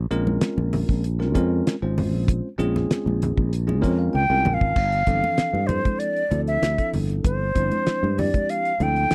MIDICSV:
0, 0, Header, 1, 6, 480
1, 0, Start_track
1, 0, Tempo, 620476
1, 1765, Time_signature, 4, 2, 24, 8
1, 7077, End_track
2, 0, Start_track
2, 0, Title_t, "Flute"
2, 0, Program_c, 0, 73
2, 3200, Note_on_c, 0, 79, 96
2, 3512, Note_on_c, 0, 77, 95
2, 3524, Note_off_c, 0, 79, 0
2, 4385, Note_on_c, 0, 72, 74
2, 4396, Note_off_c, 0, 77, 0
2, 4635, Note_on_c, 0, 74, 85
2, 4646, Note_off_c, 0, 72, 0
2, 4959, Note_off_c, 0, 74, 0
2, 5011, Note_on_c, 0, 76, 73
2, 5341, Note_off_c, 0, 76, 0
2, 5600, Note_on_c, 0, 72, 82
2, 6336, Note_on_c, 0, 74, 77
2, 6348, Note_off_c, 0, 72, 0
2, 6575, Note_on_c, 0, 77, 86
2, 6587, Note_off_c, 0, 74, 0
2, 6829, Note_on_c, 0, 79, 88
2, 6841, Note_off_c, 0, 77, 0
2, 7077, Note_off_c, 0, 79, 0
2, 7077, End_track
3, 0, Start_track
3, 0, Title_t, "Tine electric piano"
3, 0, Program_c, 1, 4
3, 83, Note_on_c, 1, 56, 105
3, 83, Note_on_c, 1, 61, 97
3, 86, Note_on_c, 1, 60, 89
3, 87, Note_on_c, 1, 65, 96
3, 88, Note_on_c, 1, 70, 117
3, 796, Note_off_c, 1, 56, 0
3, 796, Note_off_c, 1, 61, 0
3, 798, Note_off_c, 1, 60, 0
3, 798, Note_off_c, 1, 65, 0
3, 799, Note_off_c, 1, 70, 0
3, 921, Note_on_c, 1, 56, 75
3, 927, Note_on_c, 1, 60, 71
3, 927, Note_on_c, 1, 65, 77
3, 928, Note_on_c, 1, 70, 88
3, 929, Note_on_c, 1, 61, 77
3, 1024, Note_off_c, 1, 56, 0
3, 1026, Note_off_c, 1, 60, 0
3, 1026, Note_off_c, 1, 65, 0
3, 1027, Note_off_c, 1, 70, 0
3, 1028, Note_off_c, 1, 61, 0
3, 1041, Note_on_c, 1, 56, 97
3, 1042, Note_on_c, 1, 61, 93
3, 1044, Note_on_c, 1, 60, 86
3, 1044, Note_on_c, 1, 65, 85
3, 1046, Note_on_c, 1, 70, 103
3, 1350, Note_off_c, 1, 56, 0
3, 1351, Note_off_c, 1, 61, 0
3, 1352, Note_off_c, 1, 60, 0
3, 1352, Note_off_c, 1, 65, 0
3, 1353, Note_off_c, 1, 70, 0
3, 1409, Note_on_c, 1, 56, 77
3, 1411, Note_on_c, 1, 61, 70
3, 1411, Note_on_c, 1, 65, 67
3, 1412, Note_on_c, 1, 60, 64
3, 1412, Note_on_c, 1, 72, 83
3, 1916, Note_off_c, 1, 56, 0
3, 1917, Note_off_c, 1, 60, 0
3, 1917, Note_off_c, 1, 61, 0
3, 1917, Note_off_c, 1, 65, 0
3, 1918, Note_off_c, 1, 72, 0
3, 1997, Note_on_c, 1, 56, 97
3, 1997, Note_on_c, 1, 61, 91
3, 1999, Note_on_c, 1, 60, 97
3, 2002, Note_on_c, 1, 65, 91
3, 2005, Note_on_c, 1, 68, 111
3, 2712, Note_off_c, 1, 56, 0
3, 2712, Note_off_c, 1, 61, 0
3, 2713, Note_off_c, 1, 60, 0
3, 2715, Note_off_c, 1, 65, 0
3, 2716, Note_off_c, 1, 68, 0
3, 2841, Note_on_c, 1, 56, 77
3, 2841, Note_on_c, 1, 60, 70
3, 2841, Note_on_c, 1, 61, 74
3, 2844, Note_on_c, 1, 65, 70
3, 2845, Note_on_c, 1, 68, 88
3, 2942, Note_off_c, 1, 61, 0
3, 2943, Note_off_c, 1, 56, 0
3, 2943, Note_off_c, 1, 60, 0
3, 2944, Note_off_c, 1, 65, 0
3, 2945, Note_off_c, 1, 68, 0
3, 2952, Note_on_c, 1, 60, 81
3, 2955, Note_on_c, 1, 56, 93
3, 2955, Note_on_c, 1, 61, 86
3, 2955, Note_on_c, 1, 65, 85
3, 2955, Note_on_c, 1, 73, 64
3, 2957, Note_on_c, 1, 70, 109
3, 3074, Note_off_c, 1, 73, 0
3, 3085, Note_on_c, 1, 77, 57
3, 3194, Note_off_c, 1, 77, 0
3, 3196, Note_on_c, 1, 79, 63
3, 3265, Note_off_c, 1, 60, 0
3, 3266, Note_off_c, 1, 56, 0
3, 3266, Note_off_c, 1, 61, 0
3, 3266, Note_off_c, 1, 65, 0
3, 3267, Note_off_c, 1, 70, 0
3, 3314, Note_off_c, 1, 79, 0
3, 3325, Note_on_c, 1, 56, 78
3, 3325, Note_on_c, 1, 60, 64
3, 3326, Note_on_c, 1, 80, 68
3, 3327, Note_on_c, 1, 65, 69
3, 3328, Note_on_c, 1, 61, 71
3, 3331, Note_on_c, 1, 70, 87
3, 3435, Note_off_c, 1, 80, 0
3, 3447, Note_on_c, 1, 80, 56
3, 3668, Note_off_c, 1, 80, 0
3, 3682, Note_off_c, 1, 56, 0
3, 3682, Note_off_c, 1, 60, 0
3, 3683, Note_off_c, 1, 61, 0
3, 3683, Note_off_c, 1, 65, 0
3, 3685, Note_off_c, 1, 70, 0
3, 3924, Note_on_c, 1, 53, 81
3, 3925, Note_on_c, 1, 52, 76
3, 3925, Note_on_c, 1, 60, 78
3, 3927, Note_on_c, 1, 62, 69
3, 3928, Note_on_c, 1, 69, 92
3, 4333, Note_off_c, 1, 52, 0
3, 4333, Note_off_c, 1, 53, 0
3, 4334, Note_off_c, 1, 60, 0
3, 4335, Note_off_c, 1, 62, 0
3, 4335, Note_off_c, 1, 69, 0
3, 4395, Note_on_c, 1, 60, 60
3, 4396, Note_on_c, 1, 53, 65
3, 4397, Note_on_c, 1, 62, 64
3, 4399, Note_on_c, 1, 64, 63
3, 4400, Note_on_c, 1, 69, 69
3, 4809, Note_off_c, 1, 53, 0
3, 4809, Note_off_c, 1, 60, 0
3, 4810, Note_off_c, 1, 62, 0
3, 4811, Note_off_c, 1, 64, 0
3, 4812, Note_off_c, 1, 69, 0
3, 4879, Note_on_c, 1, 53, 83
3, 4879, Note_on_c, 1, 60, 74
3, 4879, Note_on_c, 1, 62, 72
3, 4882, Note_on_c, 1, 69, 83
3, 4883, Note_on_c, 1, 64, 64
3, 5189, Note_off_c, 1, 53, 0
3, 5189, Note_off_c, 1, 60, 0
3, 5189, Note_off_c, 1, 62, 0
3, 5191, Note_off_c, 1, 64, 0
3, 5191, Note_off_c, 1, 69, 0
3, 5245, Note_on_c, 1, 53, 65
3, 5248, Note_on_c, 1, 62, 55
3, 5249, Note_on_c, 1, 60, 57
3, 5250, Note_on_c, 1, 69, 75
3, 5251, Note_on_c, 1, 64, 59
3, 5756, Note_off_c, 1, 53, 0
3, 5757, Note_off_c, 1, 62, 0
3, 5758, Note_off_c, 1, 60, 0
3, 5758, Note_off_c, 1, 69, 0
3, 5759, Note_off_c, 1, 64, 0
3, 5840, Note_on_c, 1, 60, 75
3, 5841, Note_on_c, 1, 53, 79
3, 5843, Note_on_c, 1, 62, 78
3, 5844, Note_on_c, 1, 72, 90
3, 5846, Note_on_c, 1, 64, 78
3, 6254, Note_off_c, 1, 53, 0
3, 6254, Note_off_c, 1, 60, 0
3, 6255, Note_off_c, 1, 62, 0
3, 6256, Note_off_c, 1, 64, 0
3, 6256, Note_off_c, 1, 72, 0
3, 6325, Note_on_c, 1, 53, 68
3, 6326, Note_on_c, 1, 60, 58
3, 6329, Note_on_c, 1, 62, 62
3, 6333, Note_on_c, 1, 67, 77
3, 6334, Note_on_c, 1, 64, 59
3, 6737, Note_off_c, 1, 53, 0
3, 6738, Note_off_c, 1, 60, 0
3, 6739, Note_off_c, 1, 62, 0
3, 6741, Note_off_c, 1, 67, 0
3, 6742, Note_off_c, 1, 64, 0
3, 6809, Note_on_c, 1, 62, 75
3, 6811, Note_on_c, 1, 53, 78
3, 6812, Note_on_c, 1, 60, 70
3, 6813, Note_on_c, 1, 64, 79
3, 6817, Note_on_c, 1, 69, 93
3, 7077, Note_off_c, 1, 53, 0
3, 7077, Note_off_c, 1, 60, 0
3, 7077, Note_off_c, 1, 62, 0
3, 7077, Note_off_c, 1, 64, 0
3, 7077, Note_off_c, 1, 69, 0
3, 7077, End_track
4, 0, Start_track
4, 0, Title_t, "Fretless electric bass"
4, 0, Program_c, 2, 35
4, 85, Note_on_c, 2, 34, 81
4, 285, Note_off_c, 2, 34, 0
4, 446, Note_on_c, 2, 34, 79
4, 647, Note_off_c, 2, 34, 0
4, 688, Note_on_c, 2, 34, 74
4, 1045, Note_off_c, 2, 34, 0
4, 1045, Note_on_c, 2, 41, 83
4, 1245, Note_off_c, 2, 41, 0
4, 1413, Note_on_c, 2, 32, 79
4, 1655, Note_off_c, 2, 32, 0
4, 1655, Note_on_c, 2, 34, 90
4, 1852, Note_off_c, 2, 34, 0
4, 2001, Note_on_c, 2, 34, 67
4, 2202, Note_off_c, 2, 34, 0
4, 2368, Note_on_c, 2, 34, 80
4, 2567, Note_off_c, 2, 34, 0
4, 2612, Note_on_c, 2, 34, 81
4, 2968, Note_off_c, 2, 34, 0
4, 2968, Note_on_c, 2, 41, 73
4, 3165, Note_off_c, 2, 41, 0
4, 3205, Note_on_c, 2, 37, 64
4, 3316, Note_off_c, 2, 37, 0
4, 3326, Note_on_c, 2, 36, 80
4, 3431, Note_off_c, 2, 36, 0
4, 3444, Note_on_c, 2, 34, 74
4, 3555, Note_off_c, 2, 34, 0
4, 3567, Note_on_c, 2, 32, 76
4, 3671, Note_off_c, 2, 32, 0
4, 3685, Note_on_c, 2, 31, 79
4, 3884, Note_off_c, 2, 31, 0
4, 3921, Note_on_c, 2, 31, 81
4, 4025, Note_off_c, 2, 31, 0
4, 4281, Note_on_c, 2, 43, 71
4, 4484, Note_off_c, 2, 43, 0
4, 4885, Note_on_c, 2, 38, 82
4, 5084, Note_off_c, 2, 38, 0
4, 5123, Note_on_c, 2, 38, 67
4, 5227, Note_off_c, 2, 38, 0
4, 5368, Note_on_c, 2, 31, 63
4, 5567, Note_off_c, 2, 31, 0
4, 5607, Note_on_c, 2, 31, 86
4, 5807, Note_off_c, 2, 31, 0
4, 5847, Note_on_c, 2, 31, 78
4, 5950, Note_off_c, 2, 31, 0
4, 6211, Note_on_c, 2, 43, 74
4, 6411, Note_off_c, 2, 43, 0
4, 6809, Note_on_c, 2, 38, 80
4, 7010, Note_off_c, 2, 38, 0
4, 7048, Note_on_c, 2, 38, 73
4, 7077, Note_off_c, 2, 38, 0
4, 7077, End_track
5, 0, Start_track
5, 0, Title_t, "Muted fretless electric bass strokes"
5, 4163, Note_on_c, 9, 29, 31
5, 4241, Note_off_c, 9, 29, 0
5, 6087, Note_on_c, 9, 29, 32
5, 6165, Note_off_c, 9, 29, 0
5, 7077, End_track
6, 0, Start_track
6, 0, Title_t, "Drums"
6, 85, Note_on_c, 9, 42, 58
6, 163, Note_off_c, 9, 42, 0
6, 208, Note_on_c, 9, 63, 68
6, 286, Note_off_c, 9, 63, 0
6, 319, Note_on_c, 9, 42, 82
6, 321, Note_on_c, 9, 38, 109
6, 396, Note_off_c, 9, 42, 0
6, 398, Note_off_c, 9, 38, 0
6, 447, Note_on_c, 9, 63, 58
6, 525, Note_off_c, 9, 63, 0
6, 564, Note_on_c, 9, 46, 63
6, 564, Note_on_c, 9, 64, 72
6, 641, Note_off_c, 9, 46, 0
6, 642, Note_off_c, 9, 64, 0
6, 688, Note_on_c, 9, 36, 77
6, 765, Note_off_c, 9, 36, 0
6, 806, Note_on_c, 9, 42, 89
6, 883, Note_off_c, 9, 42, 0
6, 934, Note_on_c, 9, 38, 30
6, 1011, Note_off_c, 9, 38, 0
6, 1045, Note_on_c, 9, 36, 62
6, 1046, Note_on_c, 9, 42, 49
6, 1122, Note_off_c, 9, 36, 0
6, 1124, Note_off_c, 9, 42, 0
6, 1291, Note_on_c, 9, 42, 83
6, 1294, Note_on_c, 9, 38, 97
6, 1369, Note_off_c, 9, 42, 0
6, 1371, Note_off_c, 9, 38, 0
6, 1530, Note_on_c, 9, 64, 70
6, 1531, Note_on_c, 9, 46, 75
6, 1607, Note_off_c, 9, 64, 0
6, 1609, Note_off_c, 9, 46, 0
6, 1766, Note_on_c, 9, 36, 104
6, 1769, Note_on_c, 9, 42, 86
6, 1843, Note_off_c, 9, 36, 0
6, 1847, Note_off_c, 9, 42, 0
6, 2007, Note_on_c, 9, 63, 55
6, 2010, Note_on_c, 9, 42, 61
6, 2084, Note_off_c, 9, 63, 0
6, 2087, Note_off_c, 9, 42, 0
6, 2134, Note_on_c, 9, 63, 61
6, 2134, Note_on_c, 9, 64, 57
6, 2137, Note_on_c, 9, 38, 28
6, 2211, Note_off_c, 9, 63, 0
6, 2211, Note_off_c, 9, 64, 0
6, 2214, Note_off_c, 9, 38, 0
6, 2248, Note_on_c, 9, 42, 80
6, 2250, Note_on_c, 9, 38, 107
6, 2326, Note_off_c, 9, 42, 0
6, 2328, Note_off_c, 9, 38, 0
6, 2378, Note_on_c, 9, 63, 55
6, 2455, Note_off_c, 9, 63, 0
6, 2492, Note_on_c, 9, 42, 60
6, 2497, Note_on_c, 9, 64, 68
6, 2569, Note_off_c, 9, 42, 0
6, 2574, Note_off_c, 9, 64, 0
6, 2611, Note_on_c, 9, 36, 75
6, 2688, Note_off_c, 9, 36, 0
6, 2730, Note_on_c, 9, 42, 82
6, 2807, Note_off_c, 9, 42, 0
6, 2854, Note_on_c, 9, 63, 57
6, 2932, Note_off_c, 9, 63, 0
6, 2967, Note_on_c, 9, 36, 59
6, 2969, Note_on_c, 9, 42, 49
6, 3044, Note_off_c, 9, 36, 0
6, 3047, Note_off_c, 9, 42, 0
6, 3212, Note_on_c, 9, 48, 57
6, 3289, Note_off_c, 9, 48, 0
6, 3443, Note_on_c, 9, 45, 76
6, 3449, Note_on_c, 9, 64, 65
6, 3521, Note_off_c, 9, 45, 0
6, 3526, Note_off_c, 9, 64, 0
6, 3568, Note_on_c, 9, 36, 79
6, 3645, Note_off_c, 9, 36, 0
6, 3681, Note_on_c, 9, 49, 85
6, 3683, Note_on_c, 9, 36, 102
6, 3758, Note_off_c, 9, 49, 0
6, 3760, Note_off_c, 9, 36, 0
6, 3809, Note_on_c, 9, 42, 34
6, 3886, Note_off_c, 9, 42, 0
6, 3919, Note_on_c, 9, 42, 52
6, 3922, Note_on_c, 9, 36, 70
6, 3996, Note_off_c, 9, 42, 0
6, 4000, Note_off_c, 9, 36, 0
6, 4052, Note_on_c, 9, 63, 60
6, 4129, Note_off_c, 9, 63, 0
6, 4158, Note_on_c, 9, 42, 79
6, 4161, Note_on_c, 9, 38, 98
6, 4236, Note_off_c, 9, 42, 0
6, 4238, Note_off_c, 9, 38, 0
6, 4290, Note_on_c, 9, 63, 54
6, 4367, Note_off_c, 9, 63, 0
6, 4399, Note_on_c, 9, 42, 51
6, 4401, Note_on_c, 9, 63, 56
6, 4401, Note_on_c, 9, 64, 62
6, 4477, Note_off_c, 9, 42, 0
6, 4479, Note_off_c, 9, 63, 0
6, 4479, Note_off_c, 9, 64, 0
6, 4527, Note_on_c, 9, 42, 36
6, 4527, Note_on_c, 9, 63, 59
6, 4528, Note_on_c, 9, 36, 78
6, 4604, Note_off_c, 9, 63, 0
6, 4605, Note_off_c, 9, 36, 0
6, 4605, Note_off_c, 9, 42, 0
6, 4641, Note_on_c, 9, 42, 79
6, 4718, Note_off_c, 9, 42, 0
6, 4768, Note_on_c, 9, 42, 32
6, 4846, Note_off_c, 9, 42, 0
6, 4884, Note_on_c, 9, 42, 46
6, 4887, Note_on_c, 9, 63, 54
6, 4961, Note_off_c, 9, 42, 0
6, 4964, Note_off_c, 9, 63, 0
6, 5008, Note_on_c, 9, 42, 31
6, 5086, Note_off_c, 9, 42, 0
6, 5126, Note_on_c, 9, 42, 80
6, 5128, Note_on_c, 9, 38, 90
6, 5203, Note_off_c, 9, 42, 0
6, 5205, Note_off_c, 9, 38, 0
6, 5247, Note_on_c, 9, 42, 37
6, 5248, Note_on_c, 9, 36, 65
6, 5324, Note_off_c, 9, 42, 0
6, 5325, Note_off_c, 9, 36, 0
6, 5365, Note_on_c, 9, 46, 68
6, 5365, Note_on_c, 9, 64, 53
6, 5443, Note_off_c, 9, 46, 0
6, 5443, Note_off_c, 9, 64, 0
6, 5489, Note_on_c, 9, 42, 31
6, 5567, Note_off_c, 9, 42, 0
6, 5604, Note_on_c, 9, 42, 85
6, 5605, Note_on_c, 9, 36, 108
6, 5682, Note_off_c, 9, 42, 0
6, 5683, Note_off_c, 9, 36, 0
6, 5844, Note_on_c, 9, 42, 53
6, 5845, Note_on_c, 9, 36, 73
6, 5922, Note_off_c, 9, 42, 0
6, 5923, Note_off_c, 9, 36, 0
6, 5968, Note_on_c, 9, 42, 33
6, 5971, Note_on_c, 9, 63, 55
6, 6045, Note_off_c, 9, 42, 0
6, 6048, Note_off_c, 9, 63, 0
6, 6084, Note_on_c, 9, 42, 73
6, 6086, Note_on_c, 9, 38, 96
6, 6161, Note_off_c, 9, 42, 0
6, 6164, Note_off_c, 9, 38, 0
6, 6220, Note_on_c, 9, 63, 53
6, 6298, Note_off_c, 9, 63, 0
6, 6331, Note_on_c, 9, 46, 60
6, 6334, Note_on_c, 9, 63, 55
6, 6334, Note_on_c, 9, 64, 61
6, 6408, Note_off_c, 9, 46, 0
6, 6412, Note_off_c, 9, 63, 0
6, 6412, Note_off_c, 9, 64, 0
6, 6452, Note_on_c, 9, 36, 76
6, 6453, Note_on_c, 9, 42, 34
6, 6455, Note_on_c, 9, 63, 56
6, 6529, Note_off_c, 9, 36, 0
6, 6531, Note_off_c, 9, 42, 0
6, 6533, Note_off_c, 9, 63, 0
6, 6571, Note_on_c, 9, 42, 77
6, 6648, Note_off_c, 9, 42, 0
6, 6694, Note_on_c, 9, 42, 32
6, 6771, Note_off_c, 9, 42, 0
6, 6809, Note_on_c, 9, 42, 45
6, 6814, Note_on_c, 9, 63, 57
6, 6886, Note_off_c, 9, 42, 0
6, 6891, Note_off_c, 9, 63, 0
6, 6933, Note_on_c, 9, 42, 32
6, 7010, Note_off_c, 9, 42, 0
6, 7044, Note_on_c, 9, 42, 68
6, 7046, Note_on_c, 9, 38, 86
6, 7077, Note_off_c, 9, 38, 0
6, 7077, Note_off_c, 9, 42, 0
6, 7077, End_track
0, 0, End_of_file